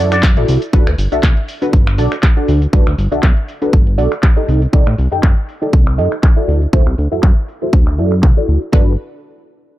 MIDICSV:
0, 0, Header, 1, 6, 480
1, 0, Start_track
1, 0, Key_signature, 1, "major"
1, 0, Tempo, 500000
1, 705, Time_signature, 4, 2, 24, 8
1, 9396, End_track
2, 0, Start_track
2, 0, Title_t, "Analog polysynth"
2, 0, Program_c, 0, 90
2, 0, Note_on_c, 0, 64, 95
2, 0, Note_on_c, 0, 66, 85
2, 0, Note_on_c, 0, 69, 81
2, 0, Note_on_c, 0, 74, 97
2, 133, Note_off_c, 0, 64, 0
2, 135, Note_off_c, 0, 66, 0
2, 135, Note_off_c, 0, 69, 0
2, 137, Note_off_c, 0, 74, 0
2, 353, Note_on_c, 0, 64, 90
2, 354, Note_on_c, 0, 66, 85
2, 357, Note_on_c, 0, 69, 83
2, 360, Note_on_c, 0, 74, 96
2, 579, Note_off_c, 0, 64, 0
2, 579, Note_off_c, 0, 66, 0
2, 581, Note_off_c, 0, 69, 0
2, 582, Note_off_c, 0, 74, 0
2, 704, Note_on_c, 0, 62, 96
2, 708, Note_on_c, 0, 66, 88
2, 710, Note_on_c, 0, 69, 90
2, 712, Note_on_c, 0, 71, 111
2, 853, Note_off_c, 0, 62, 0
2, 855, Note_off_c, 0, 66, 0
2, 856, Note_off_c, 0, 69, 0
2, 857, Note_off_c, 0, 71, 0
2, 1073, Note_on_c, 0, 62, 82
2, 1076, Note_on_c, 0, 66, 77
2, 1078, Note_on_c, 0, 69, 76
2, 1081, Note_on_c, 0, 76, 91
2, 1207, Note_off_c, 0, 62, 0
2, 1209, Note_off_c, 0, 66, 0
2, 1210, Note_off_c, 0, 69, 0
2, 1211, Note_off_c, 0, 76, 0
2, 1552, Note_on_c, 0, 62, 73
2, 1554, Note_on_c, 0, 66, 70
2, 1557, Note_on_c, 0, 69, 70
2, 1559, Note_on_c, 0, 71, 83
2, 1686, Note_off_c, 0, 62, 0
2, 1687, Note_off_c, 0, 66, 0
2, 1689, Note_off_c, 0, 69, 0
2, 1690, Note_off_c, 0, 71, 0
2, 1902, Note_on_c, 0, 62, 88
2, 1905, Note_on_c, 0, 66, 81
2, 1907, Note_on_c, 0, 69, 83
2, 1909, Note_on_c, 0, 74, 102
2, 2052, Note_off_c, 0, 62, 0
2, 2054, Note_off_c, 0, 66, 0
2, 2055, Note_off_c, 0, 69, 0
2, 2056, Note_off_c, 0, 74, 0
2, 2269, Note_on_c, 0, 62, 90
2, 2273, Note_on_c, 0, 66, 82
2, 2274, Note_on_c, 0, 69, 81
2, 2277, Note_on_c, 0, 74, 98
2, 2497, Note_off_c, 0, 62, 0
2, 2498, Note_off_c, 0, 66, 0
2, 2499, Note_off_c, 0, 69, 0
2, 2501, Note_off_c, 0, 74, 0
2, 2619, Note_on_c, 0, 62, 101
2, 2622, Note_on_c, 0, 66, 89
2, 2624, Note_on_c, 0, 69, 89
2, 2626, Note_on_c, 0, 71, 111
2, 2771, Note_off_c, 0, 62, 0
2, 2772, Note_off_c, 0, 66, 0
2, 2774, Note_off_c, 0, 69, 0
2, 2774, Note_off_c, 0, 71, 0
2, 2990, Note_on_c, 0, 62, 82
2, 2993, Note_on_c, 0, 66, 77
2, 2996, Note_on_c, 0, 69, 76
2, 2998, Note_on_c, 0, 76, 89
2, 3126, Note_off_c, 0, 62, 0
2, 3127, Note_off_c, 0, 66, 0
2, 3128, Note_off_c, 0, 69, 0
2, 3130, Note_off_c, 0, 76, 0
2, 3471, Note_on_c, 0, 62, 75
2, 3474, Note_on_c, 0, 66, 67
2, 3478, Note_on_c, 0, 69, 69
2, 3479, Note_on_c, 0, 71, 83
2, 3606, Note_off_c, 0, 62, 0
2, 3608, Note_off_c, 0, 66, 0
2, 3609, Note_off_c, 0, 69, 0
2, 3610, Note_off_c, 0, 71, 0
2, 3819, Note_on_c, 0, 62, 90
2, 3820, Note_on_c, 0, 66, 86
2, 3823, Note_on_c, 0, 69, 85
2, 3826, Note_on_c, 0, 74, 101
2, 3971, Note_off_c, 0, 62, 0
2, 3971, Note_off_c, 0, 66, 0
2, 3973, Note_off_c, 0, 69, 0
2, 3974, Note_off_c, 0, 74, 0
2, 4189, Note_on_c, 0, 63, 91
2, 4191, Note_on_c, 0, 67, 81
2, 4194, Note_on_c, 0, 69, 83
2, 4196, Note_on_c, 0, 75, 99
2, 4417, Note_off_c, 0, 63, 0
2, 4417, Note_off_c, 0, 67, 0
2, 4419, Note_off_c, 0, 69, 0
2, 4420, Note_off_c, 0, 75, 0
2, 4539, Note_on_c, 0, 63, 100
2, 4541, Note_on_c, 0, 67, 91
2, 4543, Note_on_c, 0, 69, 91
2, 4546, Note_on_c, 0, 74, 108
2, 4691, Note_off_c, 0, 63, 0
2, 4692, Note_off_c, 0, 67, 0
2, 4693, Note_off_c, 0, 69, 0
2, 4694, Note_off_c, 0, 74, 0
2, 4911, Note_on_c, 0, 63, 82
2, 4913, Note_on_c, 0, 67, 75
2, 4917, Note_on_c, 0, 69, 74
2, 4917, Note_on_c, 0, 79, 91
2, 5046, Note_off_c, 0, 63, 0
2, 5047, Note_off_c, 0, 67, 0
2, 5049, Note_off_c, 0, 69, 0
2, 5049, Note_off_c, 0, 79, 0
2, 5391, Note_on_c, 0, 63, 77
2, 5394, Note_on_c, 0, 67, 71
2, 5398, Note_on_c, 0, 69, 68
2, 5400, Note_on_c, 0, 74, 83
2, 5526, Note_off_c, 0, 63, 0
2, 5527, Note_off_c, 0, 67, 0
2, 5529, Note_off_c, 0, 69, 0
2, 5530, Note_off_c, 0, 74, 0
2, 5741, Note_on_c, 0, 63, 94
2, 5743, Note_on_c, 0, 67, 84
2, 5747, Note_on_c, 0, 69, 83
2, 5749, Note_on_c, 0, 75, 103
2, 5892, Note_off_c, 0, 63, 0
2, 5893, Note_off_c, 0, 67, 0
2, 5895, Note_off_c, 0, 69, 0
2, 5896, Note_off_c, 0, 75, 0
2, 6108, Note_on_c, 0, 64, 87
2, 6112, Note_on_c, 0, 66, 82
2, 6114, Note_on_c, 0, 69, 82
2, 6117, Note_on_c, 0, 74, 98
2, 6336, Note_off_c, 0, 64, 0
2, 6338, Note_off_c, 0, 66, 0
2, 6339, Note_off_c, 0, 69, 0
2, 6340, Note_off_c, 0, 74, 0
2, 6460, Note_on_c, 0, 64, 98
2, 6462, Note_on_c, 0, 66, 90
2, 6465, Note_on_c, 0, 69, 95
2, 6468, Note_on_c, 0, 72, 111
2, 6611, Note_off_c, 0, 64, 0
2, 6613, Note_off_c, 0, 66, 0
2, 6614, Note_off_c, 0, 69, 0
2, 6616, Note_off_c, 0, 72, 0
2, 6830, Note_on_c, 0, 64, 82
2, 6833, Note_on_c, 0, 66, 75
2, 6835, Note_on_c, 0, 69, 77
2, 6838, Note_on_c, 0, 76, 89
2, 6966, Note_off_c, 0, 64, 0
2, 6967, Note_off_c, 0, 66, 0
2, 6968, Note_off_c, 0, 69, 0
2, 6969, Note_off_c, 0, 76, 0
2, 7312, Note_on_c, 0, 64, 78
2, 7315, Note_on_c, 0, 66, 70
2, 7317, Note_on_c, 0, 69, 69
2, 7321, Note_on_c, 0, 72, 85
2, 7447, Note_off_c, 0, 64, 0
2, 7448, Note_off_c, 0, 66, 0
2, 7449, Note_off_c, 0, 69, 0
2, 7451, Note_off_c, 0, 72, 0
2, 7664, Note_on_c, 0, 64, 94
2, 7666, Note_on_c, 0, 66, 82
2, 7670, Note_on_c, 0, 69, 85
2, 7672, Note_on_c, 0, 74, 100
2, 7814, Note_off_c, 0, 64, 0
2, 7814, Note_off_c, 0, 66, 0
2, 7816, Note_off_c, 0, 69, 0
2, 7817, Note_off_c, 0, 74, 0
2, 8032, Note_on_c, 0, 64, 90
2, 8034, Note_on_c, 0, 66, 81
2, 8036, Note_on_c, 0, 69, 81
2, 8040, Note_on_c, 0, 74, 101
2, 8258, Note_off_c, 0, 64, 0
2, 8259, Note_off_c, 0, 66, 0
2, 8260, Note_off_c, 0, 69, 0
2, 8262, Note_off_c, 0, 74, 0
2, 8375, Note_on_c, 0, 62, 89
2, 8381, Note_on_c, 0, 66, 77
2, 8389, Note_on_c, 0, 69, 77
2, 8397, Note_on_c, 0, 71, 92
2, 8561, Note_off_c, 0, 62, 0
2, 8565, Note_off_c, 0, 66, 0
2, 8569, Note_off_c, 0, 69, 0
2, 8573, Note_off_c, 0, 71, 0
2, 9396, End_track
3, 0, Start_track
3, 0, Title_t, "Clean electric guitar"
3, 0, Program_c, 1, 27
3, 107, Note_on_c, 1, 62, 91
3, 115, Note_on_c, 1, 66, 83
3, 123, Note_on_c, 1, 74, 101
3, 286, Note_off_c, 1, 62, 0
3, 290, Note_off_c, 1, 66, 0
3, 294, Note_off_c, 1, 74, 0
3, 9396, End_track
4, 0, Start_track
4, 0, Title_t, "Analog synth bass"
4, 0, Program_c, 2, 38
4, 0, Note_on_c, 2, 42, 84
4, 357, Note_on_c, 2, 33, 101
4, 371, Note_off_c, 2, 42, 0
4, 435, Note_off_c, 2, 33, 0
4, 466, Note_on_c, 2, 36, 94
4, 559, Note_off_c, 2, 36, 0
4, 704, Note_on_c, 2, 31, 96
4, 798, Note_off_c, 2, 31, 0
4, 834, Note_on_c, 2, 38, 98
4, 914, Note_off_c, 2, 38, 0
4, 944, Note_on_c, 2, 31, 92
4, 1038, Note_off_c, 2, 31, 0
4, 1075, Note_on_c, 2, 35, 42
4, 1163, Note_off_c, 2, 35, 0
4, 1184, Note_on_c, 2, 35, 101
4, 1278, Note_off_c, 2, 35, 0
4, 1665, Note_on_c, 2, 31, 86
4, 1907, Note_on_c, 2, 35, 81
4, 1921, Note_off_c, 2, 31, 0
4, 2000, Note_off_c, 2, 35, 0
4, 2385, Note_on_c, 2, 38, 78
4, 2564, Note_off_c, 2, 38, 0
4, 2623, Note_on_c, 2, 31, 95
4, 2718, Note_off_c, 2, 31, 0
4, 2755, Note_on_c, 2, 38, 98
4, 2835, Note_off_c, 2, 38, 0
4, 2864, Note_on_c, 2, 31, 93
4, 2958, Note_off_c, 2, 31, 0
4, 2992, Note_on_c, 2, 35, 42
4, 3082, Note_off_c, 2, 35, 0
4, 3104, Note_on_c, 2, 35, 103
4, 3198, Note_off_c, 2, 35, 0
4, 3584, Note_on_c, 2, 31, 87
4, 3824, Note_on_c, 2, 35, 82
4, 3838, Note_off_c, 2, 31, 0
4, 3918, Note_off_c, 2, 35, 0
4, 4306, Note_on_c, 2, 36, 77
4, 4484, Note_off_c, 2, 36, 0
4, 4544, Note_on_c, 2, 36, 96
4, 4638, Note_off_c, 2, 36, 0
4, 4675, Note_on_c, 2, 45, 98
4, 4755, Note_off_c, 2, 45, 0
4, 4786, Note_on_c, 2, 36, 94
4, 4879, Note_off_c, 2, 36, 0
4, 4915, Note_on_c, 2, 42, 41
4, 5003, Note_off_c, 2, 42, 0
4, 5024, Note_on_c, 2, 42, 100
4, 5118, Note_off_c, 2, 42, 0
4, 5504, Note_on_c, 2, 36, 87
4, 5746, Note_on_c, 2, 42, 81
4, 5761, Note_off_c, 2, 36, 0
4, 5839, Note_off_c, 2, 42, 0
4, 6223, Note_on_c, 2, 38, 78
4, 6403, Note_off_c, 2, 38, 0
4, 6463, Note_on_c, 2, 38, 97
4, 6558, Note_off_c, 2, 38, 0
4, 6593, Note_on_c, 2, 36, 99
4, 6673, Note_off_c, 2, 36, 0
4, 6705, Note_on_c, 2, 38, 93
4, 6798, Note_off_c, 2, 38, 0
4, 6835, Note_on_c, 2, 42, 42
4, 6923, Note_off_c, 2, 42, 0
4, 6942, Note_on_c, 2, 42, 105
4, 7037, Note_off_c, 2, 42, 0
4, 7422, Note_on_c, 2, 38, 90
4, 7665, Note_on_c, 2, 42, 84
4, 7679, Note_off_c, 2, 38, 0
4, 7902, Note_on_c, 2, 36, 89
4, 7917, Note_off_c, 2, 42, 0
4, 7997, Note_off_c, 2, 36, 0
4, 8145, Note_on_c, 2, 38, 95
4, 8239, Note_off_c, 2, 38, 0
4, 8383, Note_on_c, 2, 31, 95
4, 8607, Note_off_c, 2, 31, 0
4, 9396, End_track
5, 0, Start_track
5, 0, Title_t, "Muted clean electric guitar strokes"
5, 458, Note_on_c, 9, 29, 33
5, 554, Note_off_c, 9, 29, 0
5, 9396, End_track
6, 0, Start_track
6, 0, Title_t, "Drums"
6, 114, Note_on_c, 9, 26, 67
6, 114, Note_on_c, 9, 42, 48
6, 116, Note_on_c, 9, 69, 41
6, 210, Note_off_c, 9, 26, 0
6, 210, Note_off_c, 9, 42, 0
6, 212, Note_off_c, 9, 69, 0
6, 223, Note_on_c, 9, 39, 114
6, 224, Note_on_c, 9, 36, 121
6, 226, Note_on_c, 9, 42, 74
6, 228, Note_on_c, 9, 69, 32
6, 319, Note_off_c, 9, 39, 0
6, 320, Note_off_c, 9, 36, 0
6, 322, Note_off_c, 9, 42, 0
6, 324, Note_off_c, 9, 69, 0
6, 354, Note_on_c, 9, 42, 34
6, 450, Note_off_c, 9, 42, 0
6, 465, Note_on_c, 9, 46, 94
6, 467, Note_on_c, 9, 69, 75
6, 561, Note_off_c, 9, 46, 0
6, 563, Note_off_c, 9, 69, 0
6, 594, Note_on_c, 9, 42, 50
6, 596, Note_on_c, 9, 69, 44
6, 690, Note_off_c, 9, 42, 0
6, 692, Note_off_c, 9, 69, 0
6, 704, Note_on_c, 9, 36, 123
6, 706, Note_on_c, 9, 42, 74
6, 708, Note_on_c, 9, 69, 32
6, 800, Note_off_c, 9, 36, 0
6, 802, Note_off_c, 9, 42, 0
6, 804, Note_off_c, 9, 69, 0
6, 836, Note_on_c, 9, 26, 78
6, 836, Note_on_c, 9, 42, 34
6, 932, Note_off_c, 9, 26, 0
6, 932, Note_off_c, 9, 42, 0
6, 945, Note_on_c, 9, 46, 104
6, 948, Note_on_c, 9, 69, 81
6, 1041, Note_off_c, 9, 46, 0
6, 1044, Note_off_c, 9, 69, 0
6, 1076, Note_on_c, 9, 42, 49
6, 1078, Note_on_c, 9, 69, 44
6, 1172, Note_off_c, 9, 42, 0
6, 1174, Note_off_c, 9, 69, 0
6, 1184, Note_on_c, 9, 36, 124
6, 1184, Note_on_c, 9, 39, 109
6, 1187, Note_on_c, 9, 42, 75
6, 1189, Note_on_c, 9, 69, 33
6, 1280, Note_off_c, 9, 36, 0
6, 1280, Note_off_c, 9, 39, 0
6, 1283, Note_off_c, 9, 42, 0
6, 1285, Note_off_c, 9, 69, 0
6, 1315, Note_on_c, 9, 42, 35
6, 1411, Note_off_c, 9, 42, 0
6, 1425, Note_on_c, 9, 46, 89
6, 1427, Note_on_c, 9, 69, 80
6, 1521, Note_off_c, 9, 46, 0
6, 1523, Note_off_c, 9, 69, 0
6, 1555, Note_on_c, 9, 42, 48
6, 1558, Note_on_c, 9, 69, 44
6, 1651, Note_off_c, 9, 42, 0
6, 1654, Note_off_c, 9, 69, 0
6, 1663, Note_on_c, 9, 36, 112
6, 1667, Note_on_c, 9, 42, 73
6, 1669, Note_on_c, 9, 69, 32
6, 1759, Note_off_c, 9, 36, 0
6, 1763, Note_off_c, 9, 42, 0
6, 1765, Note_off_c, 9, 69, 0
6, 1798, Note_on_c, 9, 26, 85
6, 1798, Note_on_c, 9, 42, 36
6, 1894, Note_off_c, 9, 26, 0
6, 1894, Note_off_c, 9, 42, 0
6, 1904, Note_on_c, 9, 46, 101
6, 1907, Note_on_c, 9, 69, 78
6, 2000, Note_off_c, 9, 46, 0
6, 2003, Note_off_c, 9, 69, 0
6, 2034, Note_on_c, 9, 26, 66
6, 2034, Note_on_c, 9, 42, 48
6, 2036, Note_on_c, 9, 69, 43
6, 2130, Note_off_c, 9, 26, 0
6, 2130, Note_off_c, 9, 42, 0
6, 2132, Note_off_c, 9, 69, 0
6, 2142, Note_on_c, 9, 36, 115
6, 2143, Note_on_c, 9, 39, 109
6, 2145, Note_on_c, 9, 42, 74
6, 2238, Note_off_c, 9, 36, 0
6, 2239, Note_off_c, 9, 39, 0
6, 2241, Note_off_c, 9, 42, 0
6, 2276, Note_on_c, 9, 42, 34
6, 2372, Note_off_c, 9, 42, 0
6, 2384, Note_on_c, 9, 46, 88
6, 2386, Note_on_c, 9, 69, 78
6, 2480, Note_off_c, 9, 46, 0
6, 2482, Note_off_c, 9, 69, 0
6, 2514, Note_on_c, 9, 42, 50
6, 2517, Note_on_c, 9, 69, 45
6, 2610, Note_off_c, 9, 42, 0
6, 2613, Note_off_c, 9, 69, 0
6, 2622, Note_on_c, 9, 36, 114
6, 2626, Note_on_c, 9, 42, 77
6, 2628, Note_on_c, 9, 69, 34
6, 2718, Note_off_c, 9, 36, 0
6, 2722, Note_off_c, 9, 42, 0
6, 2724, Note_off_c, 9, 69, 0
6, 2755, Note_on_c, 9, 26, 75
6, 2755, Note_on_c, 9, 42, 35
6, 2851, Note_off_c, 9, 26, 0
6, 2851, Note_off_c, 9, 42, 0
6, 2866, Note_on_c, 9, 46, 102
6, 2868, Note_on_c, 9, 69, 84
6, 2962, Note_off_c, 9, 46, 0
6, 2964, Note_off_c, 9, 69, 0
6, 2996, Note_on_c, 9, 42, 51
6, 2998, Note_on_c, 9, 69, 46
6, 3092, Note_off_c, 9, 42, 0
6, 3094, Note_off_c, 9, 69, 0
6, 3102, Note_on_c, 9, 36, 118
6, 3102, Note_on_c, 9, 39, 112
6, 3198, Note_off_c, 9, 36, 0
6, 3198, Note_off_c, 9, 39, 0
6, 3235, Note_on_c, 9, 42, 35
6, 3331, Note_off_c, 9, 42, 0
6, 3344, Note_on_c, 9, 46, 86
6, 3347, Note_on_c, 9, 69, 78
6, 3440, Note_off_c, 9, 46, 0
6, 3443, Note_off_c, 9, 69, 0
6, 3474, Note_on_c, 9, 42, 52
6, 3476, Note_on_c, 9, 69, 46
6, 3570, Note_off_c, 9, 42, 0
6, 3572, Note_off_c, 9, 69, 0
6, 3583, Note_on_c, 9, 36, 113
6, 3583, Note_on_c, 9, 42, 76
6, 3586, Note_on_c, 9, 69, 33
6, 3679, Note_off_c, 9, 36, 0
6, 3679, Note_off_c, 9, 42, 0
6, 3682, Note_off_c, 9, 69, 0
6, 3713, Note_on_c, 9, 42, 37
6, 3809, Note_off_c, 9, 42, 0
6, 3824, Note_on_c, 9, 46, 99
6, 3827, Note_on_c, 9, 69, 80
6, 3920, Note_off_c, 9, 46, 0
6, 3923, Note_off_c, 9, 69, 0
6, 3953, Note_on_c, 9, 26, 64
6, 3953, Note_on_c, 9, 42, 51
6, 3956, Note_on_c, 9, 69, 45
6, 4049, Note_off_c, 9, 26, 0
6, 4049, Note_off_c, 9, 42, 0
6, 4052, Note_off_c, 9, 69, 0
6, 4062, Note_on_c, 9, 36, 110
6, 4063, Note_on_c, 9, 39, 108
6, 4158, Note_off_c, 9, 36, 0
6, 4159, Note_off_c, 9, 39, 0
6, 4196, Note_on_c, 9, 42, 36
6, 4292, Note_off_c, 9, 42, 0
6, 4305, Note_on_c, 9, 46, 86
6, 4308, Note_on_c, 9, 69, 82
6, 4401, Note_off_c, 9, 46, 0
6, 4404, Note_off_c, 9, 69, 0
6, 4436, Note_on_c, 9, 42, 53
6, 4438, Note_on_c, 9, 69, 46
6, 4532, Note_off_c, 9, 42, 0
6, 4534, Note_off_c, 9, 69, 0
6, 4543, Note_on_c, 9, 36, 115
6, 4545, Note_on_c, 9, 42, 83
6, 4639, Note_off_c, 9, 36, 0
6, 4641, Note_off_c, 9, 42, 0
6, 4675, Note_on_c, 9, 26, 73
6, 4675, Note_on_c, 9, 42, 38
6, 4771, Note_off_c, 9, 26, 0
6, 4771, Note_off_c, 9, 42, 0
6, 4785, Note_on_c, 9, 46, 102
6, 4787, Note_on_c, 9, 69, 83
6, 4881, Note_off_c, 9, 46, 0
6, 4883, Note_off_c, 9, 69, 0
6, 4916, Note_on_c, 9, 42, 53
6, 4918, Note_on_c, 9, 69, 47
6, 5012, Note_off_c, 9, 42, 0
6, 5014, Note_off_c, 9, 69, 0
6, 5023, Note_on_c, 9, 36, 117
6, 5025, Note_on_c, 9, 39, 117
6, 5119, Note_off_c, 9, 36, 0
6, 5121, Note_off_c, 9, 39, 0
6, 5157, Note_on_c, 9, 42, 38
6, 5253, Note_off_c, 9, 42, 0
6, 5267, Note_on_c, 9, 46, 86
6, 5269, Note_on_c, 9, 69, 82
6, 5363, Note_off_c, 9, 46, 0
6, 5365, Note_off_c, 9, 69, 0
6, 5396, Note_on_c, 9, 42, 52
6, 5399, Note_on_c, 9, 69, 47
6, 5492, Note_off_c, 9, 42, 0
6, 5495, Note_off_c, 9, 69, 0
6, 5503, Note_on_c, 9, 36, 112
6, 5505, Note_on_c, 9, 42, 80
6, 5599, Note_off_c, 9, 36, 0
6, 5601, Note_off_c, 9, 42, 0
6, 5636, Note_on_c, 9, 26, 80
6, 5636, Note_on_c, 9, 42, 38
6, 5732, Note_off_c, 9, 26, 0
6, 5732, Note_off_c, 9, 42, 0
6, 5745, Note_on_c, 9, 46, 100
6, 5747, Note_on_c, 9, 69, 80
6, 5841, Note_off_c, 9, 46, 0
6, 5843, Note_off_c, 9, 69, 0
6, 5875, Note_on_c, 9, 26, 61
6, 5875, Note_on_c, 9, 42, 53
6, 5878, Note_on_c, 9, 69, 44
6, 5971, Note_off_c, 9, 26, 0
6, 5971, Note_off_c, 9, 42, 0
6, 5974, Note_off_c, 9, 69, 0
6, 5983, Note_on_c, 9, 36, 114
6, 5986, Note_on_c, 9, 39, 115
6, 6079, Note_off_c, 9, 36, 0
6, 6082, Note_off_c, 9, 39, 0
6, 6116, Note_on_c, 9, 42, 37
6, 6212, Note_off_c, 9, 42, 0
6, 6226, Note_on_c, 9, 46, 88
6, 6228, Note_on_c, 9, 69, 83
6, 6322, Note_off_c, 9, 46, 0
6, 6324, Note_off_c, 9, 69, 0
6, 6354, Note_on_c, 9, 42, 56
6, 6357, Note_on_c, 9, 69, 48
6, 6450, Note_off_c, 9, 42, 0
6, 6453, Note_off_c, 9, 69, 0
6, 6462, Note_on_c, 9, 36, 116
6, 6558, Note_off_c, 9, 36, 0
6, 6594, Note_on_c, 9, 26, 72
6, 6594, Note_on_c, 9, 42, 38
6, 6690, Note_off_c, 9, 26, 0
6, 6690, Note_off_c, 9, 42, 0
6, 6704, Note_on_c, 9, 46, 99
6, 6706, Note_on_c, 9, 69, 85
6, 6800, Note_off_c, 9, 46, 0
6, 6802, Note_off_c, 9, 69, 0
6, 6836, Note_on_c, 9, 42, 54
6, 6838, Note_on_c, 9, 69, 46
6, 6932, Note_off_c, 9, 42, 0
6, 6934, Note_off_c, 9, 69, 0
6, 6941, Note_on_c, 9, 36, 124
6, 6943, Note_on_c, 9, 39, 122
6, 7037, Note_off_c, 9, 36, 0
6, 7039, Note_off_c, 9, 39, 0
6, 7184, Note_on_c, 9, 46, 87
6, 7186, Note_on_c, 9, 69, 80
6, 7280, Note_off_c, 9, 46, 0
6, 7282, Note_off_c, 9, 69, 0
6, 7312, Note_on_c, 9, 42, 53
6, 7315, Note_on_c, 9, 69, 46
6, 7408, Note_off_c, 9, 42, 0
6, 7411, Note_off_c, 9, 69, 0
6, 7421, Note_on_c, 9, 36, 115
6, 7517, Note_off_c, 9, 36, 0
6, 7552, Note_on_c, 9, 39, 37
6, 7555, Note_on_c, 9, 26, 79
6, 7648, Note_off_c, 9, 39, 0
6, 7651, Note_off_c, 9, 26, 0
6, 7664, Note_on_c, 9, 46, 99
6, 7666, Note_on_c, 9, 69, 78
6, 7760, Note_off_c, 9, 46, 0
6, 7762, Note_off_c, 9, 69, 0
6, 7795, Note_on_c, 9, 26, 59
6, 7795, Note_on_c, 9, 42, 53
6, 7797, Note_on_c, 9, 69, 45
6, 7891, Note_off_c, 9, 26, 0
6, 7891, Note_off_c, 9, 42, 0
6, 7893, Note_off_c, 9, 69, 0
6, 7901, Note_on_c, 9, 36, 113
6, 7903, Note_on_c, 9, 39, 115
6, 7997, Note_off_c, 9, 36, 0
6, 7999, Note_off_c, 9, 39, 0
6, 8145, Note_on_c, 9, 46, 89
6, 8147, Note_on_c, 9, 69, 78
6, 8241, Note_off_c, 9, 46, 0
6, 8243, Note_off_c, 9, 69, 0
6, 8274, Note_on_c, 9, 42, 54
6, 8276, Note_on_c, 9, 69, 48
6, 8370, Note_off_c, 9, 42, 0
6, 8372, Note_off_c, 9, 69, 0
6, 8382, Note_on_c, 9, 36, 119
6, 8478, Note_off_c, 9, 36, 0
6, 9396, End_track
0, 0, End_of_file